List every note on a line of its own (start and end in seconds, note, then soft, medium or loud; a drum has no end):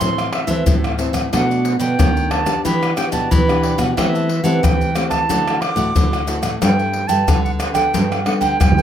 0.00 0.29 A2 medium
0.00 0.63 A2 medium
0.00 0.45 E3 medium
0.00 0.45 C4 soft
0.00 0.16 E4 medium
0.00 0.45 E4 medium
0.00 0.16 A4 medium
0.00 0.17 C5 medium
0.00 0.17 E5 medium
0.00 0.34 C6 medium
0.00 pandeiro medium
0.00 maracas medium
0.00 surdo medium
0.18 0.32 A4 soft
0.18 0.33 C5 soft
0.18 0.33 E5 soft
0.18 pandeiro soft
0.18 tamborim medium
0.18 maracas soft
0.32 0.48 E4 soft
0.32 0.48 A4 soft
0.32 0.47 C5 soft
0.32 0.99 E5 medium
0.32 0.46 E5 medium
0.32 pandeiro medium
0.32 tamborim medium
0.47 0.62 E3 medium
0.47 0.66 E3 medium
0.47 0.93 C4 medium
0.47 0.94 E4 medium
0.47 0.82 A4 medium
0.47 0.81 C5 medium
0.47 0.80 E5 medium
0.47 pandeiro medium
0.47 maracas medium
0.47 surdo soft
0.66 1.08 A2 medium
0.66 0.97 E3 medium
0.66 pandeiro medium
0.66 maracas medium
0.66 surdo loud
0.84 0.98 A4 soft
0.84 0.99 C5 soft
0.84 0.99 E5 soft
0.84 pandeiro soft
0.84 tamborim medium
0.84 maracas soft
0.98 1.27 E3 medium
0.98 1.27 C4 medium
0.98 1.14 E4 medium
0.98 1.27 E4 medium
0.98 1.14 A4 medium
0.98 1.13 C5 medium
0.98 1.12 E5 medium
0.98 pandeiro medium
0.98 maracas medium
1.13 1.28 A2 medium
1.13 1.31 A4 soft
1.13 1.30 C5 soft
1.13 1.30 E5 soft
1.13 pandeiro medium
1.13 tamborim medium
1.13 maracas medium
1.13 surdo soft
1.32 1.75 B2 medium
1.32 1.96 B2 medium
1.32 1.75 A3 medium
1.32 1.48 D4 medium
1.32 1.76 D4 soft
1.32 1.76 F#4 medium
1.32 1.48 A4 medium
1.32 1.49 B4 medium
1.32 1.49 D5 medium
1.32 1.79 F#5 medium
1.32 pandeiro medium
1.32 tamborim medium
1.32 maracas medium
1.32 surdo medium
1.50 1.64 A4 soft
1.50 1.64 B4 soft
1.50 1.65 D5 soft
1.50 pandeiro soft
1.50 maracas soft
1.65 muted cavaquinho stroke soft
1.65 pandeiro medium
1.65 maracas medium
1.79 1.95 B2 medium
1.79 2.14 A4 medium
1.79 2.13 B4 medium
1.79 2.12 D5 medium
1.79 2.32 G5 medium
1.79 pandeiro medium
1.79 maracas medium
1.98 2.61 F#2 soft
1.98 2.55 D#3 medium
1.98 2.43 A3 soft
1.98 2.43 D4 medium
1.98 pandeiro medium
1.98 tamborim medium
1.98 maracas medium
1.98 surdo loud
2.16 muted cavaquinho stroke soft
2.16 pandeiro soft
2.16 maracas soft
2.16 surdo soft
2.31 2.46 D4 soft
2.31 2.46 A4 medium
2.31 2.46 B4 medium
2.31 2.44 D5 medium
2.31 2.64 A5 medium
2.31 pandeiro medium
2.31 tamborim medium
2.31 surdo soft
2.46 2.91 B3 medium
2.46 2.92 D4 medium
2.46 2.92 G4 medium
2.46 2.63 A4 medium
2.46 2.63 B4 medium
2.46 2.62 D5 medium
2.46 pandeiro medium
2.46 tamborim medium
2.46 maracas medium
2.46 surdo soft
2.65 3.28 E3 soft
2.65 2.93 E3 medium
2.65 2.80 E4 medium
2.65 2.80 G4 medium
2.65 2.81 B4 medium
2.65 2.81 D5 medium
2.65 2.95 B5 medium
2.65 pandeiro medium
2.65 maracas medium
2.65 surdo medium
2.82 2.97 G4 soft
2.82 2.97 B4 soft
2.82 2.97 D5 soft
2.82 pandeiro soft
2.82 tamborim medium
2.82 maracas soft
2.97 3.28 B3 medium
2.97 3.28 D4 medium
2.97 3.13 E4 soft
2.97 3.29 G4 medium
2.97 3.13 G4 soft
2.97 3.12 B4 medium
2.97 3.10 D5 medium
2.97 3.11 G5 medium
2.97 pandeiro medium
2.97 tamborim medium
2.97 maracas medium
3.12 3.27 B2 medium
3.12 3.46 G4 medium
3.12 3.45 B4 medium
3.12 3.45 D5 medium
3.12 3.32 A5 medium
3.12 pandeiro medium
3.12 maracas medium
3.12 surdo soft
3.31 3.94 B2 medium
3.31 3.73 E3 medium
3.31 3.80 B5 medium
3.31 pandeiro medium
3.31 maracas medium
3.31 surdo loud
3.48 3.92 B3 medium
3.48 3.93 D4 medium
3.48 3.93 G4 medium
3.48 3.62 G4 soft
3.48 3.63 B4 soft
3.48 3.63 D5 soft
3.48 pandeiro soft
3.48 tamborim medium
3.48 maracas soft
3.62 3.78 E4 medium
3.62 3.79 G4 medium
3.62 3.78 B4 medium
3.62 3.77 D5 medium
3.62 pandeiro medium
3.78 3.93 B2 medium
3.78 3.96 G4 soft
3.78 3.95 B4 soft
3.78 3.95 D5 soft
3.78 pandeiro medium
3.78 tamborim medium
3.78 maracas medium
3.78 surdo soft
3.97 4.39 E3 loud
3.97 4.60 E3 soft
3.97 4.28 A3 soft
3.97 4.28 C4 medium
3.97 4.12 G4 medium
3.97 4.29 G4 medium
3.97 4.13 C5 medium
3.97 4.45 E5 medium
3.97 4.13 E5 medium
3.97 4.13 A5 medium
3.97 pandeiro medium
3.97 tamborim medium
3.97 maracas medium
3.97 surdo medium
4.15 4.28 C5 soft
4.15 4.28 E5 soft
4.15 4.29 A5 soft
4.15 pandeiro soft
4.15 maracas soft
4.29 muted cavaquinho stroke soft
4.29 pandeiro medium
4.44 4.59 E3 medium
4.44 4.90 A3 medium
4.44 4.90 C4 medium
4.44 4.90 G4 medium
4.44 4.78 C5 medium
4.44 4.78 E5 medium
4.44 4.65 F#5 medium
4.44 4.77 A5 medium
4.44 pandeiro medium
4.44 maracas medium
4.63 5.19 E3 medium
4.63 5.09 G5 medium
4.63 pandeiro medium
4.63 tamborim medium
4.63 maracas medium
4.63 surdo loud
4.81 pandeiro soft
4.81 maracas soft
4.81 surdo soft
4.95 5.24 A3 medium
4.95 5.24 C4 medium
4.95 5.11 G4 medium
4.95 5.24 G4 medium
4.95 5.11 C5 medium
4.95 5.10 E5 medium
4.95 5.09 A5 soft
4.95 pandeiro medium
4.95 tamborim medium
4.95 maracas medium
5.10 5.28 C5 soft
5.10 5.27 E5 medium
5.10 5.63 A5 medium
5.10 5.27 A5 medium
5.10 pandeiro medium
5.10 tamborim medium
5.10 maracas medium
5.10 surdo soft
5.29 5.57 D3 medium
5.29 5.92 D3 soft
5.29 5.61 A3 medium
5.29 5.45 E4 medium
5.29 5.61 E4 medium
5.29 5.61 F#4 medium
5.29 5.45 A4 medium
5.29 5.45 D5 medium
5.29 5.46 F#5 medium
5.29 pandeiro medium
5.29 maracas medium
5.29 surdo medium
5.47 5.61 A4 soft
5.47 5.62 D5 soft
5.47 5.62 F#5 soft
5.47 pandeiro soft
5.47 tamborim medium
5.47 maracas soft
5.61 5.77 E4 soft
5.61 5.77 A4 soft
5.61 5.76 D5 medium
5.61 5.75 F#5 medium
5.61 6.28 D6 medium
5.61 pandeiro medium
5.61 tamborim medium
5.76 5.91 A2 medium
5.76 6.22 A3 medium
5.76 6.22 E4 medium
5.76 6.22 F#4 medium
5.76 6.10 A4 medium
5.76 6.10 D5 medium
5.76 6.09 F#5 medium
5.76 pandeiro medium
5.76 maracas medium
5.76 surdo soft
5.96 6.58 A2 medium
5.96 6.38 D3 medium
5.96 pandeiro medium
5.96 maracas medium
5.96 surdo medium
6.13 6.27 A4 soft
6.13 6.28 D5 soft
6.13 6.28 F#5 soft
6.13 pandeiro soft
6.13 tamborim medium
6.13 maracas soft
6.27 6.47 A3 soft
6.27 6.43 E4 medium
6.27 6.47 E4 medium
6.27 6.48 F#4 medium
6.27 6.44 A4 medium
6.27 6.43 D5 medium
6.27 6.42 F#5 medium
6.27 pandeiro medium
6.27 maracas medium
6.43 6.58 A2 medium
6.43 6.60 A4 soft
6.43 6.60 D5 soft
6.43 6.59 F#5 soft
6.43 pandeiro medium
6.43 tamborim medium
6.43 maracas medium
6.43 surdo soft
6.61 7.04 G2 medium
6.61 7.25 G3 medium
6.61 7.04 B3 soft
6.61 6.77 D4 medium
6.61 7.05 D4 medium
6.61 6.77 A4 medium
6.61 7.05 A4 medium
6.61 6.78 B4 medium
6.61 7.09 G5 medium
6.61 6.78 G5 medium
6.61 pandeiro medium
6.61 tamborim medium
6.61 maracas medium
6.61 surdo medium
6.79 6.93 A4 soft
6.79 6.93 B4 soft
6.79 6.94 G5 soft
6.79 pandeiro soft
6.79 maracas soft
6.93 muted cavaquinho stroke soft
6.93 pandeiro medium
7.07 7.24 G2 medium
7.07 7.43 A4 medium
7.07 7.42 B4 medium
7.07 7.42 G5 medium
7.07 7.42 A5 medium
7.07 pandeiro medium
7.07 maracas medium
7.28 7.91 D3 medium
7.28 7.84 D3 medium
7.28 7.72 B3 soft
7.28 7.72 D4 soft
7.28 7.73 A4 medium
7.28 pandeiro medium
7.28 tamborim medium
7.28 maracas medium
7.28 surdo medium
7.44 7.51 F#5 medium
7.44 muted cavaquinho stroke soft
7.44 pandeiro soft
7.44 maracas soft
7.44 surdo soft
7.59 7.75 D4 soft
7.59 7.75 A4 medium
7.59 7.74 B4 medium
7.59 7.73 G5 soft
7.59 pandeiro medium
7.59 tamborim medium
7.59 maracas medium
7.59 surdo soft
7.73 8.21 B3 medium
7.73 8.21 D4 medium
7.73 8.21 A4 medium
7.73 7.92 A4 medium
7.73 7.92 B4 medium
7.73 8.21 G5 medium
7.73 7.91 G5 medium
7.73 pandeiro medium
7.73 tamborim medium
7.73 maracas medium
7.73 surdo soft
7.93 8.22 G2 medium
7.93 8.57 G3 soft
7.93 8.09 D4 medium
7.93 8.09 A4 medium
7.93 8.10 B4 medium
7.93 8.10 G5 medium
7.93 pandeiro medium
7.93 maracas medium
7.93 surdo medium
8.11 8.25 A4 soft
8.11 8.25 B4 soft
8.11 8.26 G5 soft
8.11 pandeiro soft
8.11 tamborim medium
8.11 maracas soft
8.25 8.57 B3 medium
8.25 8.41 D4 soft
8.25 8.58 D4 medium
8.25 8.41 A4 soft
8.25 8.58 A4 medium
8.25 8.40 B4 soft
8.25 8.32 F#5 medium
8.25 8.39 G5 medium
8.25 pandeiro medium
8.25 tamborim medium
8.40 8.56 D3 medium
8.40 8.75 A4 medium
8.40 8.74 B4 medium
8.40 8.74 G5 medium
8.40 8.82 G5 medium
8.40 pandeiro medium
8.40 maracas medium
8.40 surdo soft
8.60 8.82 G2 medium
8.60 8.82 D3 soft
8.60 pandeiro medium
8.60 tamborim medium
8.60 maracas medium
8.60 surdo loud
8.72 surdo medium
8.77 8.82 B3 medium
8.77 8.82 D4 medium
8.77 8.82 B4 soft
8.77 8.82 G5 soft
8.77 pandeiro soft
8.77 maracas soft